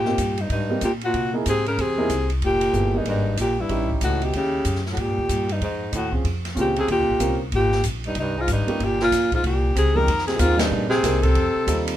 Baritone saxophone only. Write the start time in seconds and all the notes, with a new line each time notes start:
Already playing: A#2
0.40 G2
0.51 G2
0.84 A#2
1.04 A#2
1.48 C3
1.68 C#3
1.81 C3
2.44 A#2
2.95 G2
3.07 G2
3.39 A#2
3.59 G2
4.03 A2
4.23 B2
4.36 C#3
4.91 A2
4.99 A#2
5.51 G2
5.62 G#2
5.93 A2
6.57 A#2
6.78 C3
6.91 A#2
7.54 A#2
8.06 G2
8.19 G2
8.38 G#2
8.51 G2
8.82 A#2
9.01 A#2
9.33 G#2
9.45 A#2
9.75 C3
9.95 D#3
10.27 C3
10.37 G#2
10.57 G2
10.89 C3
11.21 C3